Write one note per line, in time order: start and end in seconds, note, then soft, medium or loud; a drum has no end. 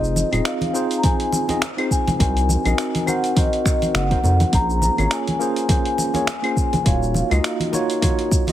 0.00 0.23 F1 loud
0.00 0.28 C4 medium
0.00 0.28 D#4 medium
0.00 0.29 F4 medium
0.00 0.29 G#4 medium
0.00 0.29 C5 medium
0.00 0.48 D#5 medium
0.00 cabasa soft
0.16 high conga medium
0.16 cabasa medium
0.32 0.41 D#1 loud
0.32 0.71 C4 medium
0.32 0.71 D#4 medium
0.32 0.72 F4 medium
0.32 0.72 G#4 medium
0.32 0.72 D#5 medium
0.32 closed hi-hat soft
0.32 cabasa soft
0.32 claves medium
0.45 1.00 F5 medium
0.45 finger snap loud
0.45 closed hi-hat medium
0.45 cabasa soft
0.61 closed hi-hat soft
0.61 high conga medium
0.73 1.00 C4 medium
0.73 1.00 D#4 medium
0.73 1.01 F4 medium
0.73 1.01 G#4 medium
0.73 1.01 C5 loud
0.73 cabasa medium
0.91 closed hi-hat soft
0.91 cabasa soft
0.98 1.04 A#5 medium
1.03 1.45 C4 medium
1.03 1.45 D#4 medium
1.03 1.45 F4 medium
1.03 1.46 G#4 medium
1.03 1.46 C5 loud
1.03 1.58 G#5 loud
1.03 kick loud
1.03 closed hi-hat medium
1.03 high conga medium
1.03 cabasa soft
1.20 closed hi-hat soft
1.33 muted conga medium
1.33 cabasa medium
1.48 1.60 C4 medium
1.48 1.61 D#4 medium
1.48 1.61 F4 medium
1.48 1.61 G#4 medium
1.48 1.62 D#5 loud
1.48 closed hi-hat soft
1.48 muted conga medium
1.48 high conga medium
1.48 cabasa soft
1.62 finger snap loud
1.62 closed hi-hat medium
1.62 cabasa soft
1.77 2.16 C4 medium
1.77 2.17 D#4 medium
1.77 2.17 F4 medium
1.77 2.17 G#4 medium
1.77 2.18 C5 loud
1.77 closed hi-hat soft
1.77 claves medium
1.91 2.05 G#5 medium
1.91 kick medium
1.91 cabasa medium
2.07 closed hi-hat soft
2.07 high conga loud
2.07 low conga medium
2.07 cabasa soft
2.19 2.56 C2 loud
2.19 2.61 C4 medium
2.19 2.61 D#4 medium
2.19 2.62 F#4 medium
2.19 2.62 A#4 medium
2.19 2.62 C5 medium
2.19 3.11 G#5 loud
2.19 kick loud
2.19 closed hi-hat medium
2.19 cabasa soft
2.37 closed hi-hat soft
2.37 cabasa soft
2.49 high conga medium
2.49 cabasa medium
2.64 2.74 A#1 medium
2.64 3.04 C4 medium
2.64 3.04 D#4 medium
2.64 3.04 F#4 medium
2.64 3.05 A#4 medium
2.64 3.05 D#5 medium
2.64 closed hi-hat soft
2.64 cabasa soft
2.64 claves medium
2.78 finger snap loud
2.78 closed hi-hat medium
2.78 cabasa soft
2.95 closed hi-hat soft
2.95 high conga medium
2.95 cabasa soft
3.06 3.33 C4 medium
3.06 3.33 D#4 medium
3.06 3.33 F#4 medium
3.06 3.34 A#4 medium
3.06 3.34 C5 loud
3.06 3.38 F#5 medium
3.06 muted conga medium
3.06 cabasa medium
3.06 claves medium
3.24 closed hi-hat soft
3.24 cabasa soft
3.35 3.62 C4 medium
3.35 3.63 D#4 medium
3.35 3.63 F#4 medium
3.35 3.63 A#4 medium
3.35 3.64 C5 loud
3.35 3.97 D#5 medium
3.35 kick loud
3.35 closed hi-hat medium
3.35 high conga medium
3.35 cabasa soft
3.53 closed hi-hat soft
3.64 4.07 C4 medium
3.64 4.07 D#4 medium
3.64 4.07 F#4 medium
3.64 4.07 A#4 medium
3.64 4.08 C5 medium
3.64 finger snap soft
3.64 kick loud
3.64 cabasa medium
3.82 closed hi-hat soft
3.82 high conga medium
3.82 cabasa soft
3.94 4.15 F#1 medium
3.94 4.50 F#5 medium
3.94 finger snap loud
3.94 closed hi-hat medium
3.94 cabasa soft
4.10 4.18 C4 medium
4.10 4.18 D#4 medium
4.10 4.19 F#4 medium
4.10 4.19 A#4 medium
4.10 4.19 C5 loud
4.10 kick medium
4.10 closed hi-hat soft
4.10 muted conga soft
4.23 4.44 F2 loud
4.23 4.49 C4 medium
4.23 4.50 D#4 medium
4.23 4.50 F#4 medium
4.23 4.50 A#4 medium
4.23 4.51 C5 medium
4.23 low conga medium
4.23 cabasa medium
4.40 closed hi-hat soft
4.40 high conga medium
4.40 cabasa soft
4.52 4.89 A#1 loud
4.52 4.94 A#3 medium
4.52 4.94 C#4 medium
4.52 4.95 F4 medium
4.52 4.95 G#4 medium
4.52 4.95 C5 loud
4.52 4.82 A#5 loud
4.52 kick loud
4.52 closed hi-hat medium
4.52 cabasa soft
4.70 cabasa soft
4.82 5.10 A#5 loud
4.82 high conga loud
4.82 cabasa medium
4.97 5.07 G#1 loud
4.97 5.37 A#3 medium
4.97 5.37 C#4 medium
4.97 5.37 F4 medium
4.97 5.38 G#4 medium
4.97 5.38 C#5 medium
4.97 closed hi-hat soft
4.97 cabasa soft
4.97 claves medium
5.11 finger snap medium
5.11 closed hi-hat medium
5.11 cabasa soft
5.28 closed hi-hat soft
5.28 high conga medium
5.39 5.66 A#3 loud
5.39 5.66 C#4 medium
5.39 5.66 F4 medium
5.39 5.67 G#4 medium
5.39 5.67 C5 loud
5.39 cabasa medium
5.56 closed hi-hat soft
5.56 cabasa soft
5.68 6.10 A#3 medium
5.68 6.11 C#4 medium
5.68 6.11 F4 medium
5.68 6.11 G#4 medium
5.68 6.12 C5 loud
5.68 6.90 G#5 loud
5.68 kick loud
5.68 closed hi-hat medium
5.68 high conga medium
5.68 cabasa soft
5.85 closed hi-hat soft
5.98 muted conga medium
5.98 cabasa medium
6.13 6.26 A#3 medium
6.13 6.26 C#4 medium
6.13 6.27 F4 medium
6.13 6.27 G#4 medium
6.13 6.27 C#5 loud
6.13 closed hi-hat soft
6.13 muted conga medium
6.13 high conga medium
6.13 cabasa soft
6.27 finger snap loud
6.27 closed hi-hat medium
6.27 cabasa soft
6.42 6.82 A#3 medium
6.42 6.82 C#4 medium
6.42 6.83 F4 medium
6.42 6.83 G#4 medium
6.42 6.83 C5 loud
6.42 closed hi-hat soft
6.42 claves medium
6.57 kick medium
6.57 cabasa medium
6.73 closed hi-hat soft
6.73 high conga medium
6.73 low conga medium
6.73 cabasa soft
6.84 7.22 D#1 loud
6.84 7.27 A#3 medium
6.84 7.27 D#4 medium
6.84 7.27 F4 medium
6.84 7.28 F#4 medium
6.84 7.28 C#5 medium
6.84 7.99 F5 medium
6.84 kick loud
6.84 closed hi-hat medium
6.84 cabasa soft
7.03 cabasa soft
7.14 high conga medium
7.14 cabasa medium
7.30 7.40 C#2 loud
7.30 7.70 A#3 medium
7.30 7.70 D#4 medium
7.30 7.70 F4 medium
7.30 7.71 F#4 medium
7.30 7.71 D#5 medium
7.30 closed hi-hat soft
7.30 cabasa soft
7.30 claves medium
7.44 finger snap medium
7.44 closed hi-hat medium
7.44 cabasa soft
7.60 closed hi-hat soft
7.60 high conga medium
7.72 7.99 A#3 medium
7.72 7.99 D#4 medium
7.72 7.99 F4 medium
7.72 8.00 F#4 medium
7.72 8.00 C#5 loud
7.72 muted conga medium
7.72 cabasa medium
7.90 closed hi-hat soft
7.90 cabasa soft
8.01 8.43 A#3 medium
8.01 8.44 D#4 medium
8.01 8.44 F4 medium
8.01 8.44 F#4 medium
8.01 8.45 C#5 loud
8.01 kick loud
8.01 closed hi-hat medium
8.01 high conga medium
8.01 cabasa soft
8.19 closed hi-hat soft
8.31 kick loud
8.31 cabasa medium
8.47 8.52 A#3 medium
8.47 8.52 D#4 medium
8.47 8.52 F4 medium
8.47 closed hi-hat soft
8.47 high conga medium
8.47 cabasa soft